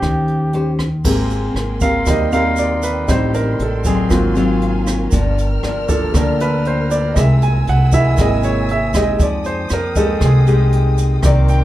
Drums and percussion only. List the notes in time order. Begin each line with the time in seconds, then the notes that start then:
0.02 kick, cross-stick, closed hi-hat
0.28 closed hi-hat
0.53 closed hi-hat
0.79 kick, cross-stick, closed hi-hat
1.05 kick, crash, shaker
1.30 closed hi-hat, shaker
1.56 cross-stick, closed hi-hat
1.81 kick, closed hi-hat, shaker
2.06 kick, cross-stick, closed hi-hat, shaker
2.32 closed hi-hat, shaker
2.56 closed hi-hat, shaker
2.83 closed hi-hat, shaker
3.08 kick, cross-stick, closed hi-hat, shaker
3.34 closed hi-hat, shaker
3.59 closed hi-hat
3.84 kick, closed hi-hat, shaker
4.10 kick, cross-stick, closed hi-hat, shaker
4.35 closed hi-hat, shaker
4.62 closed hi-hat
4.87 cross-stick, closed hi-hat, shaker
5.12 kick, closed hi-hat, shaker
5.38 closed hi-hat, shaker
5.63 cross-stick, closed hi-hat
5.89 kick, closed hi-hat, shaker
6.14 kick, cross-stick, closed hi-hat, shaker
6.40 closed hi-hat, shaker
6.65 closed hi-hat
6.91 closed hi-hat, shaker
7.16 kick, cross-stick, closed hi-hat, shaker
7.42 closed hi-hat, shaker
7.67 closed hi-hat
7.92 kick, closed hi-hat, shaker
8.17 kick, cross-stick, closed hi-hat, shaker
8.43 closed hi-hat, shaker
8.68 closed hi-hat
8.94 kick, cross-stick, closed hi-hat, shaker
9.20 kick, closed hi-hat, shaker
9.44 closed hi-hat, shaker
9.69 cross-stick, closed hi-hat, shaker
9.96 kick, closed hi-hat, shaker
10.21 kick, cross-stick, closed hi-hat, shaker
10.47 closed hi-hat, shaker
10.72 closed hi-hat
10.98 closed hi-hat, shaker
11.23 kick, cross-stick, closed hi-hat, shaker
11.48 closed hi-hat, shaker